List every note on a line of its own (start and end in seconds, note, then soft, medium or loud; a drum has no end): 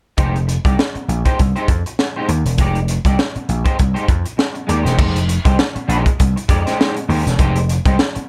0.17 0.57 F1 loud
0.17 0.36 G#3 medium
0.17 0.36 D#4 medium
0.17 0.37 G4 medium
0.17 0.37 C5 medium
0.17 kick loud
0.17 closed hi-hat medium
0.36 closed hi-hat soft
0.47 muted clean electric guitar stroke soft
0.47 closed hi-hat medium
0.65 0.76 C2 medium
0.65 0.77 G#3 soft
0.65 0.77 D#4 medium
0.65 0.77 G4 medium
0.65 0.77 D5 medium
0.65 kick medium
0.65 closed hi-hat medium
0.78 muted clean electric guitar stroke soft
0.78 snare loud
0.94 muted clean electric guitar stroke soft
0.94 muted slap bass stroke soft
0.94 closed hi-hat soft
1.08 1.22 A#1 medium
1.08 closed hi-hat medium
1.25 1.37 G#3 medium
1.25 1.38 D#4 medium
1.25 1.39 G4 medium
1.25 1.39 C5 medium
1.25 kick medium
1.25 closed hi-hat soft
1.39 1.53 C2 medium
1.39 muted clean electric guitar stroke soft
1.39 kick medium
1.39 closed hi-hat medium
1.56 1.67 G#3 medium
1.56 1.67 D#4 medium
1.56 1.68 G4 medium
1.56 1.68 C5 medium
1.56 closed hi-hat soft
1.68 1.82 F2 medium
1.68 kick medium
1.68 closed hi-hat medium
1.86 muted clean electric guitar stroke soft
1.86 closed hi-hat soft
1.99 muted clean electric guitar stroke soft
1.99 snare medium
2.16 2.28 G#3 medium
2.16 2.29 D#4 medium
2.16 2.29 G4 medium
2.16 2.30 C5 medium
2.29 2.42 D#2 medium
2.29 muted clean electric guitar stroke soft
2.29 closed hi-hat medium
2.45 2.59 E1 medium
2.45 muted clean electric guitar stroke soft
2.45 closed hi-hat medium
2.58 2.97 F1 loud
2.58 2.77 G#3 medium
2.58 2.78 D#4 medium
2.58 2.78 G4 medium
2.58 2.78 D5 medium
2.58 kick medium
2.58 closed hi-hat medium
2.75 closed hi-hat soft
2.88 muted clean electric guitar stroke soft
2.88 closed hi-hat medium
3.05 3.16 C2 medium
3.05 3.17 G#3 medium
3.05 3.18 D#4 medium
3.05 3.18 G4 medium
3.05 3.17 D5 medium
3.05 kick medium
3.05 closed hi-hat medium
3.18 muted clean electric guitar stroke soft
3.18 snare loud
3.35 muted clean electric guitar stroke soft
3.35 muted slap bass stroke soft
3.35 closed hi-hat soft
3.49 3.63 A#1 medium
3.49 closed hi-hat medium
3.64 3.76 G#3 medium
3.64 3.77 D#4 medium
3.64 3.77 G4 medium
3.64 3.77 C5 medium
3.64 kick medium
3.64 closed hi-hat medium
3.77 3.93 C2 medium
3.77 muted clean electric guitar stroke soft
3.77 kick medium
3.77 closed hi-hat medium
3.94 4.06 G#3 medium
3.94 4.07 D#4 medium
3.94 4.07 G4 medium
3.94 4.08 C5 medium
3.94 closed hi-hat soft
4.08 4.22 F2 medium
4.08 muted clean electric guitar stroke soft
4.08 kick medium
4.08 closed hi-hat medium
4.25 muted clean electric guitar stroke soft
4.25 closed hi-hat medium
4.37 muted clean electric guitar stroke soft
4.37 snare medium
4.53 muted clean electric guitar stroke soft
4.53 closed hi-hat soft
4.67 4.83 D#2 medium
4.67 4.83 G#3 medium
4.67 4.83 D#4 medium
4.67 4.83 G4 medium
4.67 4.83 D5 medium
4.67 closed hi-hat medium
4.83 4.96 E1 medium
4.83 4.96 G#3 medium
4.83 4.96 D#4 medium
4.83 4.97 G4 medium
4.83 4.96 C5 medium
4.83 snare soft
4.83 closed hi-hat medium
4.97 5.38 F1 loud
4.97 5.16 G#3 medium
4.97 5.17 D#4 medium
4.97 5.17 G4 medium
4.97 5.17 C5 medium
4.97 kick loud
4.97 crash medium
5.16 closed hi-hat medium
5.28 muted clean electric guitar stroke soft
5.28 closed hi-hat medium
5.45 5.56 C2 medium
5.45 5.57 G#3 medium
5.45 5.57 D#4 medium
5.45 5.57 G4 medium
5.45 5.57 C5 medium
5.45 kick loud
5.45 closed hi-hat medium
5.59 snare loud
5.75 muted clean electric guitar stroke soft
5.75 muted slap bass stroke soft
5.75 closed hi-hat soft
5.88 6.03 A#1 medium
5.88 6.08 G#3 medium
5.88 6.05 D#4 medium
5.88 6.04 G4 medium
5.88 6.04 C5 medium
5.88 closed hi-hat medium
6.05 muted clean electric guitar stroke soft
6.05 kick medium
6.05 closed hi-hat soft
6.19 6.33 C2 medium
6.19 muted clean electric guitar stroke soft
6.19 kick medium
6.19 closed hi-hat loud
6.36 muted clean electric guitar stroke soft
6.36 closed hi-hat soft
6.48 6.63 F2 loud
6.48 6.64 G#3 medium
6.48 6.64 D#4 medium
6.48 6.64 G4 medium
6.48 6.64 D5 medium
6.48 kick medium
6.48 closed hi-hat medium
6.66 6.76 G#3 medium
6.66 6.78 D#4 medium
6.66 6.78 G4 medium
6.66 6.78 C5 medium
6.66 snare soft
6.66 closed hi-hat medium
6.78 6.97 G#3 medium
6.78 6.96 D#4 medium
6.78 6.95 G4 medium
6.78 6.95 C5 medium
6.78 snare loud
6.96 muted clean electric guitar stroke medium
6.96 closed hi-hat medium
7.08 7.23 D#2 loud
7.08 7.24 G#3 medium
7.08 7.24 D#4 medium
7.08 7.24 G4 medium
7.08 7.24 C5 medium
7.08 open hi-hat medium
7.26 7.37 E1 medium
7.26 muted clean electric guitar stroke soft
7.26 snare soft
7.26 closed hi-hat medium
7.39 7.78 F1 loud
7.39 7.57 G#3 medium
7.39 7.58 D#4 medium
7.39 7.58 G4 medium
7.39 7.58 C5 medium
7.39 kick loud
7.39 closed hi-hat medium
7.56 closed hi-hat medium
7.69 muted clean electric guitar stroke soft
7.69 closed hi-hat medium
7.85 7.97 C2 medium
7.85 7.97 G#3 medium
7.85 7.98 D#4 medium
7.85 7.98 G4 medium
7.85 7.97 C5 medium
7.85 kick medium
7.85 closed hi-hat medium
7.98 muted clean electric guitar stroke soft
7.98 snare loud
8.15 muted clean electric guitar stroke soft
8.15 muted slap bass stroke soft
8.15 closed hi-hat soft